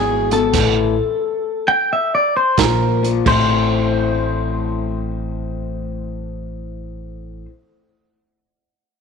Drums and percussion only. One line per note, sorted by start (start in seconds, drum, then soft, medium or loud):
0.31 closed hi-hat medium
0.53 kick loud
0.53 snare soft
0.53 closed hi-hat medium
0.53 crash medium
2.57 kick medium
2.57 snare loud
2.57 closed hi-hat medium
3.04 closed hi-hat medium
3.26 kick loud
3.26 crash medium